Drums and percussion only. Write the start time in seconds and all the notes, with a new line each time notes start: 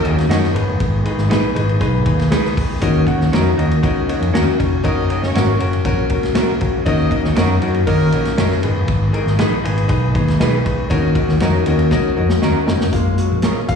0.05 ride
0.18 snare, ride
0.31 snare, ride
0.43 snare
0.56 ride
0.80 kick, ride
1.05 ride
1.18 snare
1.31 snare, ride
1.56 ride
1.69 ride
1.81 kick, ride
2.06 kick, ride
2.19 snare, ride
2.31 snare, ride
2.45 snare
2.57 kick, open hi-hat, ride
2.81 kick, hi-hat pedal, ride
3.07 kick, ride
3.21 snare
3.33 snare, ride
3.59 ride
3.71 ride
3.84 kick, ride
4.09 ride
4.22 ride
4.35 snare, ride
4.60 kick, ride
4.85 kick, ride
5.10 ride
5.23 snare
5.35 snare, ride
5.60 ride
5.73 ride
5.85 kick, ride
6.09 kick, ride
6.23 snare, ride
6.35 snare, ride
6.61 kick, ride
6.86 kick, ride
7.11 kick, ride
7.24 snare
7.36 snare, ride
7.62 ride
7.74 ride
7.87 kick, ride
8.12 ride
8.25 snare, ride
8.38 snare, ride
8.51 snare
8.63 ride
8.88 kick, ride
9.14 ride
9.27 snare
9.39 snare, ride
9.65 ride
9.78 ride
9.89 kick, ride
10.15 kick, ride
10.28 snare, ride
10.40 snare, ride
10.66 kick, ride
10.91 kick, ride
11.15 kick, ride
11.29 snare
11.40 snare, ride
11.66 ride
11.79 ride
11.91 kick, snare
12.29 snare
12.42 snare
12.68 snare
12.81 snare
12.93 kick, closed hi-hat
13.18 closed hi-hat
13.42 snare, closed hi-hat
13.68 kick, closed hi-hat